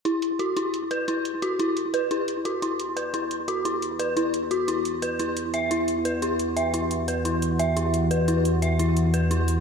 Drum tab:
HH |xxxxxxxx|xxxxxxxx|xxxxxxxx|xxxxxxxx|

HH |xxxxxxxx|xxxxxxxx|xxxxxxxx|